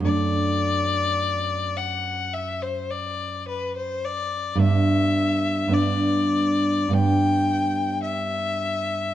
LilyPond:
<<
  \new Staff \with { instrumentName = "Violin" } { \time 4/4 \key g \major \tempo 4 = 53 d''4. fis''8 e''16 c''16 d''8 b'16 c''16 d''8 | e''4 d''4 g''4 e''4 | }
  \new Staff \with { instrumentName = "Nylon-string guitar" } { \time 4/4 \key g \major <fis, a d'>1 | <g, b d'>4 <g, b d'>4 <g, b d'>2 | }
>>